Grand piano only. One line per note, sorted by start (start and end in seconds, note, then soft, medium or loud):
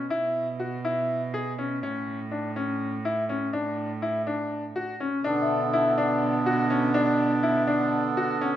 0.10 0.46 E4 medium
0.60 0.77 F#4 soft
0.85 1.20 E4 medium
1.34 1.51 G#4 medium
1.58 1.76 C#4 medium
1.83 2.18 C#4 medium
2.31 2.49 D4 soft
2.56 2.91 C#4 medium
3.05 3.22 E4 medium
3.29 3.47 C#4 medium
3.53 3.89 D4 medium
4.02 4.20 E4 medium
4.27 4.62 D4 medium
4.76 4.93 F#4 medium
5.00 5.18 C#4 medium
5.24 5.60 D4 medium
5.73 5.91 E4 medium
5.98 6.33 D4 medium
6.46 6.64 F#4 medium
6.70 6.88 C#4 medium
6.94 7.30 D4 medium
7.43 7.61 E4 medium
7.67 8.03 D4 medium
8.17 8.35 F#4 medium
8.41 8.56 C#4 medium